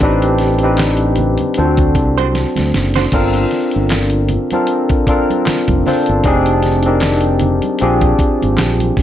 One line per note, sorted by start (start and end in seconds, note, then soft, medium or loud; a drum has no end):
0.00 1.36 A1 loud
0.00 0.53 C4 loud
0.00 0.54 D4 medium
0.00 0.54 D#4 medium
0.00 0.54 G4 medium
0.00 kick loud
0.00 closed hi-hat medium
0.00 muted conga soft
0.04 0.54 B4 loud
0.22 closed hi-hat medium
0.22 muted conga soft
0.38 snare soft
0.38 closed hi-hat soft
0.59 closed hi-hat soft
0.63 1.56 C4 medium
0.63 1.57 D4 medium
0.63 1.58 D#4 medium
0.63 1.58 G4 medium
0.63 1.58 B4 medium
0.77 snare loud
0.77 clap medium
0.77 closed hi-hat medium
0.77 muted conga soft
0.97 closed hi-hat soft
1.16 closed hi-hat medium
1.16 low conga medium
1.38 closed hi-hat medium
1.38 high conga medium
1.38 low conga medium
1.54 2.93 C4 medium
1.54 2.93 D4 medium
1.54 closed hi-hat medium
1.54 muted conga soft
1.58 1.96 D2 medium
1.58 1.65 F4 medium
1.58 2.94 A4 medium
1.58 2.94 C5 medium
1.65 2.97 F#4 medium
1.77 kick medium
1.77 closed hi-hat medium
1.95 2.44 C2 medium
1.95 kick medium
1.95 closed hi-hat medium
2.18 2.28 D4 medium
2.18 2.27 F#4 soft
2.18 2.26 C5 medium
2.18 closed hi-hat soft
2.18 high conga medium
2.34 snare medium
2.34 closed hi-hat medium
2.34 muted conga soft
2.34 high conga soft
2.56 2.72 D2 medium
2.56 snare medium
2.56 closed hi-hat medium
2.56 muted conga soft
2.56 high conga medium
2.74 3.06 F#1 medium
2.74 snare medium
2.74 closed hi-hat medium
2.74 low conga medium
2.94 3.05 D4 soft
2.94 3.05 F#4 medium
2.94 3.04 C5 medium
2.94 snare medium
2.94 closed hi-hat medium
3.12 3.44 G1 loud
3.12 4.30 C4 medium
3.12 4.30 D4 medium
3.12 4.30 F4 medium
3.12 4.31 A4 medium
3.12 4.31 A#4 loud
3.12 kick loud
3.12 closed hi-hat medium
3.12 crash medium
3.34 closed hi-hat soft
3.34 muted conga soft
3.51 snare soft
3.51 closed hi-hat soft
3.71 closed hi-hat soft
3.76 4.37 G1 medium
3.89 snare loud
3.89 clap medium
3.89 closed hi-hat medium
3.89 muted conga soft
4.10 closed hi-hat medium
4.10 muted conga soft
4.29 closed hi-hat medium
4.29 low conga medium
4.51 5.01 C4 medium
4.51 5.01 D4 medium
4.51 5.01 F4 medium
4.51 5.01 A4 medium
4.51 5.02 A#4 medium
4.51 closed hi-hat soft
4.51 high conga medium
4.67 closed hi-hat medium
4.89 kick medium
4.89 closed hi-hat soft
5.07 5.76 C4 medium
5.07 5.76 D4 medium
5.07 5.76 F4 medium
5.07 5.77 A4 medium
5.07 5.77 A#4 medium
5.07 kick medium
5.07 closed hi-hat medium
5.30 closed hi-hat soft
5.30 high conga medium
5.46 muted fingered electric bass stroke soft
5.46 snare loud
5.46 clap medium
5.46 closed hi-hat medium
5.46 muted conga soft
5.46 high conga soft
5.68 5.82 F1 medium
5.68 kick medium
5.68 closed hi-hat medium
5.68 high conga medium
5.86 6.20 C4 medium
5.86 6.20 D4 medium
5.86 6.21 F4 medium
5.86 6.21 A4 medium
5.86 6.21 C5 medium
5.86 snare soft
5.86 open hi-hat soft
5.86 low conga medium
6.06 6.22 G1 medium
6.06 closed hi-hat medium
6.24 7.60 F1 loud
6.24 6.76 C4 medium
6.24 6.76 D4 medium
6.24 6.77 D#4 medium
6.24 6.77 G4 medium
6.24 6.77 G#4 loud
6.24 kick loud
6.24 closed hi-hat medium
6.24 muted conga soft
6.46 closed hi-hat soft
6.62 snare soft
6.62 closed hi-hat soft
6.83 7.80 C4 medium
6.83 7.80 D4 medium
6.83 closed hi-hat soft
6.87 7.81 D#4 medium
6.87 7.81 G4 medium
6.87 7.81 A#4 medium
7.00 snare loud
7.00 clap medium
7.00 closed hi-hat medium
7.21 closed hi-hat medium
7.25 muted conga soft
7.39 closed hi-hat medium
7.39 low conga medium
7.62 closed hi-hat soft
7.62 high conga medium
7.79 8.12 A#1 medium
7.79 9.03 C4 medium
7.79 9.03 D4 medium
7.79 9.03 F4 medium
7.79 9.03 G4 medium
7.79 closed hi-hat medium
7.83 9.03 G#4 medium
8.01 kick medium
8.01 closed hi-hat soft
8.01 muted conga soft
8.19 muted fingered electric bass stroke soft
8.19 kick loud
8.19 closed hi-hat medium
8.42 8.56 G#1 medium
8.42 closed hi-hat soft
8.42 high conga medium
8.57 8.90 A#1 medium
8.57 snare loud
8.57 clap medium
8.57 closed hi-hat medium
8.57 muted conga soft
8.57 high conga soft
8.79 closed hi-hat medium
8.79 high conga medium
8.97 kick medium
8.97 snare soft
8.97 open hi-hat soft
8.97 low conga medium